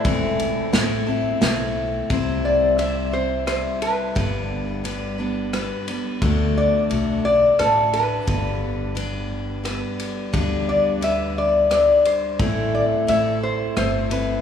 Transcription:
0.00 1.72 E4 medium
0.00 2.06 A4 medium
0.00 1.72 C5 medium
0.00 2.07 C5 medium
0.04 0.56 E1 medium
0.04 0.73 A2 medium
0.04 0.73 E3 medium
0.04 0.71 A3 medium
0.04 0.72 C4 medium
0.04 0.73 E4 medium
0.04 0.74 A4 medium
0.04 kick loud
0.04 ride medium
0.39 ride medium
0.73 1.31 A1 medium
0.73 1.07 A3 medium
0.73 1.07 C4 medium
0.73 1.06 E4 medium
0.73 1.06 A4 medium
0.73 snare medium
0.73 ride medium
1.07 1.40 A3 soft
1.07 1.40 C4 soft
1.07 1.41 E4 soft
1.07 1.41 A4 medium
1.41 2.00 B1 medium
1.41 2.10 A3 medium
1.41 2.09 C4 medium
1.41 2.10 E4 medium
1.41 2.11 A4 medium
1.41 snare medium
1.41 ride medium
2.10 3.64 C2 medium
2.10 2.79 C3 medium
2.10 2.77 G3 medium
2.10 2.77 C4 medium
2.10 2.78 E4 medium
2.10 2.79 C5 medium
2.10 kick medium
2.10 ride medium
2.45 2.80 D5 medium
2.78 3.13 G3 medium
2.78 3.13 C4 soft
2.78 3.12 E4 soft
2.78 3.11 C5 medium
2.78 3.14 E5 medium
2.78 ride medium
3.12 3.46 C4 soft
3.12 3.47 E4 soft
3.12 3.47 C5 soft
3.12 3.46 C5 medium
3.46 4.15 G3 soft
3.46 4.16 C4 soft
3.46 4.16 E4 medium
3.46 3.82 C5 medium
3.46 cross-stick medium
3.46 ride medium
3.82 4.72 B4 medium
3.82 ride medium
4.15 5.70 G1 medium
4.15 4.84 G2 medium
4.15 4.84 D3 medium
4.15 4.83 G3 medium
4.15 4.83 B3 medium
4.15 4.85 D4 medium
4.15 4.85 B4 medium
4.15 kick medium
4.15 ride medium
4.72 5.15 A4 medium
4.84 5.19 G3 medium
4.84 5.19 B3 medium
4.84 5.18 D4 medium
4.84 5.17 B4 medium
4.84 ride medium
5.18 5.52 G3 soft
5.18 5.53 B3 soft
5.18 5.53 D4 soft
5.18 5.53 B4 soft
5.53 5.87 G3 medium
5.53 5.88 B3 medium
5.53 5.87 D4 medium
5.53 5.86 B4 medium
5.53 cross-stick medium
5.53 ride medium
5.87 6.22 G3 soft
5.87 6.22 B3 soft
5.87 6.21 D4 soft
5.87 6.22 B4 soft
5.87 ride soft
6.22 6.73 D2 medium
6.22 6.90 D3 medium
6.22 6.88 A3 medium
6.22 6.90 D4 medium
6.22 6.90 F#4 medium
6.22 6.90 A4 medium
6.22 kick medium
6.22 ride soft
6.57 7.24 D5 medium
6.90 7.49 B1 medium
6.90 7.25 A3 medium
6.90 7.25 D4 medium
6.90 7.24 F#4 medium
6.90 7.23 A4 medium
6.90 ride medium
7.24 7.58 D4 soft
7.24 7.59 F#4 soft
7.24 7.59 A4 soft
7.24 7.57 D5 medium
7.59 8.18 A1 medium
7.59 7.93 A3 medium
7.59 7.94 D4 medium
7.59 7.93 F#4 medium
7.59 7.95 A4 medium
7.59 7.92 A4 medium
7.59 cross-stick medium
7.59 ride soft
7.93 8.27 D4 soft
7.93 8.28 F#4 soft
7.93 8.28 A4 soft
7.93 9.27 B4 medium
7.93 ride soft
8.27 9.81 G1 medium
8.27 8.96 G2 medium
8.27 8.96 D3 medium
8.27 8.94 G3 medium
8.27 8.94 B3 medium
8.27 8.95 D4 medium
8.27 8.96 B4 medium
8.27 kick medium
8.27 ride medium
8.95 9.62 G3 medium
8.95 9.63 B3 medium
8.95 9.64 D4 medium
8.95 9.65 B4 medium
8.95 ride medium
9.64 10.32 G3 medium
9.64 10.32 B3 medium
9.64 10.33 D4 medium
9.64 10.33 B4 medium
9.64 cross-stick medium
9.64 ride medium
9.99 ride medium
10.33 11.87 D2 medium
10.33 11.02 G2 medium
10.33 11.02 D3 medium
10.33 11.00 G3 medium
10.33 11.01 B3 medium
10.33 11.01 D4 medium
10.33 11.02 B4 medium
10.33 kick medium
10.33 ride medium
10.69 11.01 D5 medium
11.01 11.68 G3 medium
11.01 11.71 B3 medium
11.01 11.70 D4 medium
11.01 11.71 B4 medium
11.01 11.35 E5 medium
11.01 ride medium
11.38 11.69 D5 medium
11.70 12.39 G3 soft
11.70 12.40 D4 medium
11.70 12.03 D5 medium
11.70 cross-stick medium
11.70 ride medium
12.05 12.38 C5 medium
12.05 ride medium
12.39 12.91 A1 medium
12.39 13.08 A2 medium
12.39 13.08 E3 medium
12.39 13.07 A3 medium
12.39 13.08 C4 medium
12.39 13.08 E4 medium
12.39 13.09 A4 medium
12.39 kick medium
12.39 ride soft
12.75 12.84 D5 medium
13.07 13.66 A1 medium
13.07 13.75 A3 medium
13.07 13.76 C4 medium
13.07 13.76 E4 medium
13.07 13.77 A4 medium
13.07 13.41 E5 medium
13.07 ride medium
13.43 13.76 C5 medium
13.76 14.35 G1 medium
13.76 14.11 A3 medium
13.76 14.10 C4 medium
13.76 14.10 E4 medium
13.76 14.09 A4 medium
13.76 14.11 C5 medium
13.76 cross-stick medium
13.76 ride medium
14.10 14.41 A3 soft
14.10 14.41 C4 soft
14.10 14.41 E4 soft
14.10 14.41 A4 soft
14.10 14.41 B4 medium
14.10 ride medium

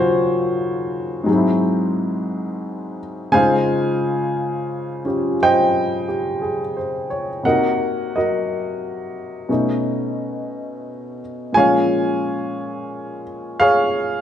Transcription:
0.00 1.26 D#2 medium
0.00 1.28 C#3 soft
0.00 1.25 F#3 soft
0.00 1.29 F4 medium
0.00 2.98 F#4 medium
0.00 2.98 C5 medium
0.00 1.29 C#5 medium
0.00 1.31 F5 medium
1.24 3.31 G#2 medium
1.24 3.33 F#3 medium
1.29 3.32 G#3 soft
1.29 3.35 C4 soft
1.35 3.37 E4 medium
3.32 7.43 C#3 medium
3.32 7.44 G#3 medium
3.32 7.45 D#4 soft
3.32 5.35 C5 medium
3.32 5.35 F5 medium
3.32 5.01 G#5 loud
3.37 5.05 F4 medium
5.05 7.44 C#4 soft
5.05 7.44 F4 soft
5.05 6.07 G4 soft
5.43 6.75 C5 medium
5.43 7.42 D#5 medium
5.43 7.52 G5 loud
6.08 6.61 G4 soft
6.42 7.07 G#4 soft
6.77 7.29 C5 soft
7.10 7.63 C#5 soft
7.43 9.49 C3 soft
7.43 9.50 A#3 soft
7.43 9.49 D#4 soft
7.43 8.16 A#4 medium
7.43 8.14 D#5 medium
7.43 8.16 F#5 medium
7.48 8.16 F#4 medium
8.16 11.19 F#4 soft
8.16 9.47 A#4 soft
8.16 11.18 D#5 medium
9.49 11.54 B2 soft
9.49 11.55 A3 soft
9.49 11.55 C#4 soft
9.49 11.55 D#4 soft
11.52 14.21 A#2 medium
11.52 14.21 F3 soft
11.52 14.21 G#3 soft
11.52 13.22 G#5 medium
11.57 14.21 C#4 medium
11.57 13.57 C#5 medium
11.57 13.57 F5 medium
13.60 14.21 G#4 medium
13.60 14.21 C#5 medium
13.60 14.21 F5 loud

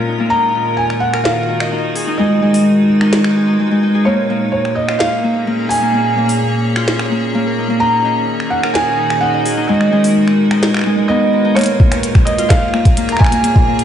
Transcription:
0.00 0.31 A#2 medium
0.00 0.31 G#3 medium
0.00 0.19 A#3 medium
0.00 1.06 C#4 medium
0.00 1.78 F4 loud
0.00 2.19 F4 medium
0.00 1.13 A#4 medium
0.00 5.30 A#4 medium
0.08 0.31 D#4 medium
0.20 3.41 A#3 medium
0.30 2.19 D#3 medium
0.30 0.54 D#4 loud
0.30 0.79 A#5 loud
0.55 1.48 D#4 medium
0.62 5.56 D#4 medium
0.72 4.07 F#4 medium
0.77 0.82 G#5 medium
0.90 finger snap soft
1.00 1.25 F#5 medium
1.13 3.26 A#4 loud
1.13 finger snap medium
1.24 2.14 F5 medium
1.24 snare loud
1.49 1.72 D#4 medium
1.60 3.39 D#5 medium
1.60 finger snap medium
1.72 2.07 D#4 medium
1.96 3.36 G#4 medium
1.96 open hi-hat medium
2.07 3.01 D#4 medium
2.17 4.06 G#3 medium
2.17 2.41 G#3 loud
2.17 2.85 D#5 medium
2.42 3.58 G#3 medium
2.54 open hi-hat medium
3.01 3.48 D#4 loud
3.01 finger snap medium
3.13 snare loud
3.24 finger snap medium
3.36 3.94 G#4 medium
3.48 3.83 D#4 medium
3.60 3.70 G#3 medium
3.71 4.11 G#3 medium
3.83 5.70 D#4 medium
3.95 6.22 G#4 medium
4.05 7.81 A#2 medium
4.05 4.29 A#3 medium
4.05 4.50 C#5 medium
4.19 8.56 A#3 medium
4.30 5.23 A#3 medium
4.36 9.69 C#4 medium
4.52 4.77 C#5 medium
4.64 8.56 G#4 medium
4.64 finger snap soft
4.75 5.00 D#5 medium
4.89 6.76 F4 loud
4.89 finger snap medium
4.99 5.72 F5 loud
4.99 snare loud
5.04 8.57 C#5 medium
5.24 5.47 A#3 medium
5.47 5.82 A#3 medium
5.59 7.46 A#4 medium
5.69 7.58 D#4 medium
5.69 6.36 G#5 loud
5.69 open hi-hat medium
5.82 5.94 A#3 loud
5.94 6.17 A#3 loud
6.17 7.11 A#3 loud
6.29 open hi-hat medium
6.76 9.28 F4 loud
6.76 finger snap medium
6.88 snare loud
6.99 finger snap medium
7.11 7.34 A#3 medium
7.35 7.69 A#3 loud
7.46 8.63 A#4 medium
7.58 7.81 D#4 medium
7.70 10.91 A#3 loud
7.80 9.69 D#3 medium
7.80 8.05 D#4 loud
7.80 8.53 A#5 loud
7.87 12.35 D#4 medium
7.94 11.56 F#4 medium
8.05 8.98 D#4 medium
8.40 finger snap soft
8.50 8.75 F#5 medium
8.62 13.04 A#4 medium
8.62 10.76 A#4 loud
8.62 finger snap medium
8.74 9.23 G#5 loud
8.74 snare loud
8.99 9.22 D#4 medium
9.10 finger snap medium
9.21 9.57 D#4 medium
9.21 9.70 F#5 medium
9.34 11.12 D#5 medium
9.46 11.73 G#4 medium
9.46 open hi-hat medium
9.57 10.51 D#4 loud
9.68 11.56 G#3 medium
9.68 9.91 G#3 medium
9.68 10.12 D#5 medium
9.81 finger snap soft
9.92 10.85 G#3 medium
10.04 open hi-hat medium
10.28 finger snap soft
10.51 11.33 D#4 loud
10.51 finger snap medium
10.63 snare loud
10.74 finger snap medium
10.77 finger snap soft
10.79 finger snap soft
10.81 finger snap soft
10.84 10.97 G#3 medium
10.84 finger snap soft
10.98 11.61 G#3 medium
11.08 11.62 B3 medium
11.08 11.52 D#5 loud
11.33 11.44 D#4 medium
11.45 13.20 D#4 medium
11.55 13.84 A#2 medium
11.55 11.80 A#3 loud
11.55 12.28 C#5 medium
11.55 finger snap medium
11.55 closed hi-hat soft
11.59 closed hi-hat soft
11.61 closed hi-hat soft
11.64 closed hi-hat medium
11.66 closed hi-hat medium
11.74 13.84 A#3 medium
11.80 12.73 A#3 medium
11.80 13.84 F4 medium
11.80 13.84 G#4 medium
11.80 kick loud
11.92 finger snap medium
11.92 closed hi-hat medium
12.03 13.84 C#5 medium
12.03 closed hi-hat medium
12.15 finger snap medium
12.15 kick loud
12.25 12.48 D#5 medium
12.25 closed hi-hat soft
12.38 13.84 F4 loud
12.38 closed hi-hat medium
12.49 13.15 F5 loud
12.49 finger snap medium
12.49 kick loud
12.49 snare loud
12.49 closed hi-hat medium
12.74 12.97 A#3 medium
12.74 finger snap medium
12.85 kick loud
12.85 closed hi-hat medium
12.97 13.32 A#3 loud
12.97 closed hi-hat medium
13.09 13.84 A#4 medium
13.09 13.20 A#5 medium
13.09 finger snap soft
13.09 closed hi-hat soft
13.17 13.84 D#4 medium
13.17 13.84 G#5 loud
13.17 finger snap soft
13.17 kick loud
13.24 finger snap medium
13.26 finger snap medium
13.32 13.44 A#3 loud
13.32 closed hi-hat medium
13.44 13.67 A#3 loud
13.44 closed hi-hat medium
13.56 kick loud
13.67 13.84 A#3 loud
13.79 closed hi-hat medium

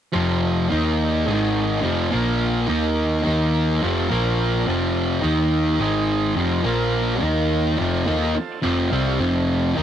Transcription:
0.13 0.68 F1 medium
0.13 0.70 F2 medium
0.13 0.69 C3 loud
0.13 0.69 F3 loud
0.13 0.38 F4 loud
0.13 0.39 A4 medium
0.13 0.38 C5 loud
0.43 0.67 F4 medium
0.43 0.67 A4 medium
0.43 0.67 D#5 medium
0.70 1.25 D#2 medium
0.70 1.26 D#3 medium
0.70 1.28 A#3 loud
0.70 1.27 D#4 loud
0.70 0.96 D#4 medium
0.70 0.96 A#4 medium
0.70 0.96 D#5 medium
1.00 1.24 D#4 medium
1.00 1.24 A#4 medium
1.00 1.25 D5 medium
1.25 1.80 G#1 medium
1.25 1.82 G#2 medium
1.25 1.83 D#3 loud
1.25 1.84 G#3 medium
1.25 1.51 D#4 medium
1.25 1.51 G#4 medium
1.25 1.51 D#5 loud
1.55 1.80 D#4 medium
1.55 1.80 G#4 medium
1.55 1.80 D#5 medium
1.82 2.10 F1 medium
1.82 2.11 F2 medium
1.82 2.10 C3 medium
1.82 2.10 F3 loud
1.82 2.08 C4 medium
1.82 2.08 F4 medium
1.82 2.08 A4 medium
2.11 2.66 A#1 medium
2.11 2.67 A#2 medium
2.11 2.68 F3 medium
2.11 2.60 A#3 medium
2.11 2.68 A#3 medium
2.11 2.60 F4 medium
2.11 2.61 A#4 medium
2.68 3.22 D#2 medium
2.68 3.22 D#3 medium
2.68 3.17 A#3 medium
2.68 3.23 A#3 medium
2.68 3.17 D#4 medium
2.68 3.24 D#4 medium
2.68 3.18 A#4 medium
3.23 3.80 D#3 medium
3.23 3.81 A#3 medium
3.23 3.81 D#4 medium
3.27 3.79 D#2 medium
3.27 3.51 A#3 medium
3.27 3.51 D#4 medium
3.27 3.51 A#4 medium
3.52 3.77 A#3 loud
3.52 3.77 D#4 loud
3.52 3.78 A#4 loud
3.81 4.10 F1 medium
3.81 4.10 F2 medium
3.81 4.09 C3 loud
3.81 4.09 F3 medium
3.81 4.06 C4 medium
3.81 4.06 F4 medium
3.81 4.06 A4 medium
4.09 4.64 A#1 medium
4.09 4.66 A#2 medium
4.09 4.66 F3 medium
4.09 4.34 A#3 medium
4.09 4.67 A#3 medium
4.09 4.34 F4 medium
4.09 4.34 A#4 medium
4.39 4.63 A#3 medium
4.39 4.63 F4 medium
4.39 4.64 A#4 medium
4.64 5.23 F2 loud
4.64 5.21 C3 medium
4.64 4.90 F4 loud
4.64 4.90 A4 medium
4.64 4.91 C5 loud
4.68 5.21 F1 medium
4.68 5.23 F3 loud
4.91 5.17 F4 medium
4.91 5.18 A4 medium
4.91 5.18 D5 medium
5.22 5.77 D#2 medium
5.22 5.79 D#3 medium
5.22 5.79 A#3 medium
5.22 5.47 D#4 medium
5.22 5.79 D#4 medium
5.22 5.48 A#4 medium
5.22 5.48 D#5 medium
5.52 5.76 D#4 medium
5.52 5.76 A#4 medium
5.52 5.76 D#5 medium
5.80 6.33 G#1 medium
5.80 6.36 G#2 medium
5.80 6.36 D#3 medium
5.80 6.37 G#3 loud
5.80 6.04 D#4 loud
5.80 6.05 G#4 medium
5.80 6.05 D#5 loud
6.11 6.35 D#4 medium
6.11 6.34 G#4 medium
6.11 6.35 D#5 medium
6.36 6.63 F1 medium
6.36 6.64 F2 medium
6.36 6.62 C3 medium
6.36 6.63 F3 medium
6.36 6.63 F4 medium
6.41 6.63 A4 medium
6.41 6.63 C5 medium
6.62 7.18 A#1 medium
6.62 7.20 A#2 medium
6.62 7.21 F3 medium
6.62 7.21 A#3 loud
6.67 7.14 F4 medium
6.67 7.14 A#4 medium
6.67 7.15 F5 loud
7.20 7.75 D#2 medium
7.20 7.77 D#3 medium
7.20 7.78 A#3 medium
7.20 7.70 D#4 medium
7.20 7.78 D#4 loud
7.20 7.71 A#4 medium
7.20 7.71 D#5 medium
7.77 8.06 F1 medium
7.77 8.06 F2 medium
7.77 8.05 C3 medium
7.77 8.06 F3 loud
7.77 8.27 F4 medium
7.77 8.27 A4 medium
7.77 8.27 C5 medium
8.05 8.35 D#2 loud
8.05 8.34 D#3 medium
8.05 8.34 A#3 medium
8.05 8.35 D#4 loud
8.33 8.59 F4 medium
8.33 8.60 A4 medium
8.33 8.60 C5 medium
8.33 8.62 A5 medium
8.33 muted distorted electric guitar stroke medium
8.33 muted picked electric bass stroke soft
8.62 8.91 F1 medium
8.62 8.91 F2 medium
8.62 8.90 C3 medium
8.62 8.91 F3 loud
8.62 8.88 F4 medium
8.62 8.88 A4 medium
8.62 8.88 C5 medium
8.62 8.90 G5 medium
8.89 9.18 C2 medium
8.89 9.19 C3 medium
8.89 9.20 G3 medium
8.89 9.20 C4 loud
8.89 9.15 F4 medium
8.89 9.15 A4 medium
8.89 9.16 D#5 medium
8.89 9.18 F5 medium
9.19 9.73 F1 medium
9.19 9.76 F2 medium
9.19 9.76 C3 medium
9.19 9.77 F3 medium
9.19 9.44 F4 loud
9.19 9.45 A4 medium
9.19 9.44 C5 loud
9.46 9.72 F4 medium
9.46 9.72 A4 medium
9.46 9.72 D5 medium
9.74 9.83 D#3 loud
9.74 9.83 A#3 loud
9.74 9.83 D#4 medium
9.74 9.83 A#4 medium
9.74 9.83 D#5 medium
9.79 9.83 D#2 medium

